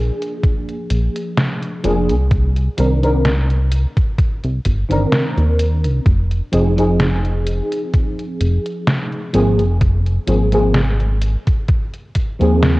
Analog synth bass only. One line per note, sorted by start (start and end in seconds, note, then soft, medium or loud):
0.00 0.11 A#1 loud
0.90 1.09 A#1 medium
1.84 2.11 F1 loud
2.09 2.69 C2 medium
2.78 3.86 C2 loud
4.44 4.60 C2 medium
4.66 4.84 G1 medium
4.91 5.07 G1 medium
5.38 5.86 D#2 medium
5.85 6.00 C2 loud
6.06 6.41 F1 loud
6.54 7.61 F1 loud
8.41 8.59 F1 medium
9.35 9.61 G#1 loud
9.60 10.19 F1 medium
10.28 11.36 G#1 loud
12.41 12.80 D#2 medium